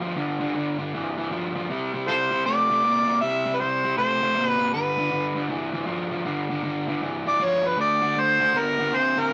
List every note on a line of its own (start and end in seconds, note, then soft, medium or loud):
0.01 0.14 G2 medium
0.01 0.14 F3 medium
0.15 0.37 G2 medium
0.15 0.38 D3 medium
0.40 0.52 G2 medium
0.40 0.53 D3 medium
0.54 0.76 G2 medium
0.54 0.76 D3 medium
0.79 0.91 G2 medium
0.79 0.91 D3 medium
0.94 1.15 G2 medium
0.94 1.15 E3 medium
1.18 1.30 G2 medium
1.18 1.30 E3 medium
1.31 1.52 G2 medium
1.31 1.53 F3 medium
1.55 1.67 G2 medium
1.55 1.68 F3 medium
1.70 1.91 C3 medium
1.70 1.91 G3 medium
1.94 2.06 C3 medium
1.94 2.06 G3 medium
2.07 2.29 C3 medium
2.07 2.29 G3 medium
2.07 2.14 F4 medium
2.07 2.16 A4 medium
2.07 2.42 C5 medium
2.31 2.44 C3 medium
2.31 2.44 G3 medium
2.46 2.67 C3 medium
2.46 2.67 A3 medium
2.46 3.17 D5 loud
2.70 2.82 C3 medium
2.70 2.82 A3 medium
2.84 3.05 C3 medium
2.84 3.05 A#3 loud
3.07 3.19 C3 medium
3.07 3.20 A#3 medium
3.21 3.43 C3 medium
3.21 3.43 G3 medium
3.21 3.57 E5 loud
3.46 3.58 C3 medium
3.46 3.58 G3 medium
3.55 3.61 B4 medium
3.60 3.81 C3 medium
3.60 3.82 G3 medium
3.60 3.97 C5 loud
3.85 3.96 C3 medium
3.85 3.96 G3 medium
3.97 4.19 C3 medium
3.97 4.19 A3 medium
3.97 4.47 C5 loud
4.22 4.34 C3 medium
4.22 4.34 A3 medium
4.35 4.56 C3 medium
4.35 4.57 A#3 medium
4.47 4.70 B4 loud
4.59 4.71 C3 medium
4.59 4.71 A#3 medium
4.73 4.95 G2 medium
4.73 4.95 D3 medium
4.73 5.45 B4 medium
4.97 5.09 G2 medium
4.97 5.10 D3 medium
5.10 5.32 G2 medium
5.10 5.33 D3 medium
5.35 5.48 G2 medium
5.35 5.48 D3 medium
5.49 5.71 G2 medium
5.49 5.71 E3 loud
5.73 5.85 G2 medium
5.73 5.86 E3 medium
5.86 6.08 G2 medium
5.86 6.09 F3 loud
6.11 6.24 G2 medium
6.11 6.24 F3 medium
6.25 6.47 G2 medium
6.25 6.47 D3 medium
6.50 6.62 G2 medium
6.50 6.62 D3 medium
6.63 6.85 G2 medium
6.63 6.85 D3 medium
6.87 7.00 G2 medium
6.87 7.00 D3 medium
7.02 7.23 G2 medium
7.02 7.24 E3 medium
7.25 7.38 G2 medium
7.25 7.39 E3 medium
7.25 7.45 D5 loud
7.39 7.61 G2 medium
7.39 7.62 F3 medium
7.44 7.68 C#5 medium
7.63 7.76 G2 medium
7.63 7.76 F3 medium
7.63 7.79 B4 medium
7.77 7.99 D3 medium
7.77 8.00 A3 medium
7.77 8.21 D5 loud
8.02 8.14 D3 medium
8.02 8.15 A3 medium
8.16 8.38 D3 medium
8.16 8.38 A3 medium
8.16 8.60 C5 loud
8.40 8.52 D3 medium
8.40 8.53 A3 medium
8.54 8.76 D3 medium
8.54 8.76 B3 medium
8.54 8.97 A#4 loud
8.79 8.91 D3 medium
8.79 8.91 B3 medium
8.92 9.14 D3 medium
8.92 9.14 C4 loud
8.92 9.21 C5 medium
9.17 9.29 D3 medium
9.17 9.30 C4 medium
9.17 9.33 A#4 loud